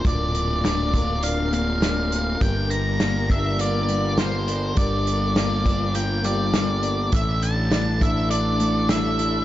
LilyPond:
<<
  \new Staff \with { instrumentName = "Lead electric guitar" } { \time 4/4 \key g \dorian \tempo 4 = 102 d''4 d''4 f''8 f''4. | g''8 bes''4 e''8 d''4 c''4 | d''4 d''4 g''8 d''4. | e''8 a''4 e''8 d''4 e''4 | }
  \new Staff \with { instrumentName = "String section" } { \time 4/4 \key g \dorian << { <d' bes'>1~ | <d' bes'>1~ | <d' bes'>1 | <d' a'>1 | } \\ { f'1 | g'1 | f'1 | e'1 | } >> }
  \new Staff \with { instrumentName = "Clean electric guitar" } { \time 4/4 \key g \dorian <bes, bes d' f'>4 d'8 f'8 d'8 bes8 d'8 f'8 | g,4 bes8 d'8 bes8 g8 bes8 d'8 | g,4 bes8 d'8 bes8 g8 bes8 d'8 | a,4 d'8 e'8 d'8 a8 d'8 e'8 | }
  \new Staff \with { instrumentName = "Fingered electric bass" } { \clef bass \time 4/4 \key g \dorian d,,1 | g,,1 | g,,1 | a,,1 | }
  \new DrumStaff \with { instrumentName = "Drums" } \drummode { \time 4/4 <hh bd>8 hh8 <hh sn>8 <hh bd>8 hh8 hh8 <hh sn>8 hh8 | <hh bd>8 hh8 <hh sn>8 <hh bd>8 hh8 hh8 <hh sn>8 hh8 | <hh bd>8 hh8 <hh sn>8 <hh bd>8 hh8 hh8 <hh sn>8 hh8 | <hh bd>8 hh8 <hh sn>8 <hh bd>8 hh8 hh8 <hh sn>8 hh8 | }
>>